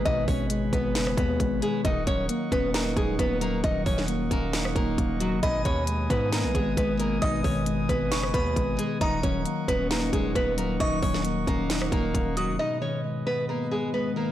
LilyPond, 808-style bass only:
\new Staff \with { instrumentName = "808-style bass" } { \clef bass \time 4/4 \key gis \minor \tempo 4 = 134 gis,,8 gis,,4 gis,,8 fis,,8 dis,8 gis,,8 r8 | dis,,8 dis,,8 r8 dis,,4 dis,,8 dis,,4 | dis,,8 dis,,4 dis,,4 dis,,8 dis,,8. eis,,16 | gis,,8 dis,4 gis,8. b,,16 gis,,8 gis,,4 |
gis,,8 gis,,4 gis,,8 fis,,8 dis,8 gis,,8 r8 | dis,,8 dis,,8 r8 dis,,4 dis,,8 dis,,4 | dis,,8 dis,,4 dis,,4 dis,,8 dis,,8. eis,,16 | r1 | }